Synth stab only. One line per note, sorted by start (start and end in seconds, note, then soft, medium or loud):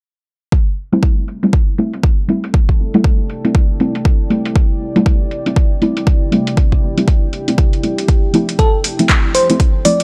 0.92 1.39 G3 medium
0.92 1.39 A3 medium
0.92 1.39 C4 medium
0.92 1.40 E4 medium
1.43 1.57 G3 medium
1.43 1.57 A3 medium
1.43 1.57 C4 medium
1.43 1.57 E4 medium
1.78 2.26 G3 medium
1.78 2.26 A3 medium
1.78 2.26 C4 medium
1.78 2.26 E4 medium
2.28 2.90 G3 medium
2.28 2.91 A3 medium
2.28 2.91 C4 medium
2.28 2.91 E4 medium
2.94 3.41 G3 medium
2.94 3.41 A3 medium
2.94 3.41 C4 medium
2.94 3.41 E4 medium
3.44 3.59 G3 medium
3.44 3.59 A3 medium
3.44 3.59 C4 medium
3.44 3.59 E4 medium
3.80 4.28 G3 medium
3.80 4.28 A3 medium
3.80 4.28 C4 medium
3.80 4.28 E4 medium
4.30 4.92 G3 medium
4.30 4.92 A3 medium
4.30 4.92 C4 medium
4.30 4.93 E4 medium
4.96 5.43 G3 medium
4.96 5.43 A3 medium
4.96 5.43 C4 medium
4.96 5.43 E4 medium
5.46 5.60 G3 medium
5.46 5.61 A3 medium
5.46 5.61 C4 medium
5.46 5.61 E4 medium
5.81 6.30 G3 medium
5.81 6.30 A3 medium
5.81 6.30 C4 medium
5.81 6.30 E4 medium
6.32 6.94 G3 medium
6.32 6.94 A3 medium
6.32 6.94 C4 medium
6.32 6.94 E4 loud
6.97 7.44 G3 medium
6.97 7.44 A3 medium
6.97 7.44 C4 medium
6.97 7.44 E4 loud
7.48 7.62 G3 medium
7.48 7.62 A3 medium
7.48 7.62 C4 medium
7.48 7.62 E4 medium
7.83 8.31 G3 medium
7.83 8.31 A3 medium
7.83 8.31 C4 medium
7.83 8.31 E4 medium
8.33 8.95 F3 medium
8.33 8.96 A3 medium
8.33 8.96 C4 medium
8.33 8.96 E4 medium
8.99 9.46 F3 medium
8.99 9.46 A3 medium
8.99 9.46 C4 medium
8.99 9.46 E4 medium
9.49 9.64 F3 medium
9.49 9.64 A3 medium
9.49 9.64 C4 medium
9.49 9.64 E4 medium
9.85 10.03 F3 medium
9.85 10.03 A3 medium
9.85 10.03 C4 medium
9.85 10.03 E4 medium